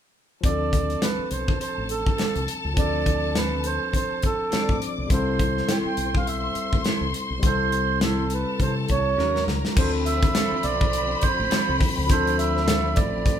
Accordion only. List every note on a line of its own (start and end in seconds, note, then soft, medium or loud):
0.45 1.04 D5 loud
1.03 1.30 B4 medium
1.32 1.59 C5 medium
1.61 1.88 C5 medium
1.91 2.44 A4 medium
2.79 3.38 D5 loud
3.37 3.66 B4 medium
3.66 3.94 C5 medium
3.96 4.25 C5 medium
4.25 4.78 A4 medium
5.13 5.72 C5 medium
5.71 5.78 G5 medium
5.87 6.16 G5 medium
6.17 6.27 F5 medium
6.28 6.82 E5 medium
7.46 7.99 C5 loud
8.04 8.33 A4 medium
8.34 8.59 B4 medium
8.62 8.75 C5 medium
8.91 9.44 C#5 medium
9.79 9.91 C5 loud
10.06 10.66 E5 loud
10.64 11.24 D5 loud
11.22 11.76 C5 medium
12.10 12.37 C5 loud
12.39 12.99 E5 loud
12.96 13.40 D5 medium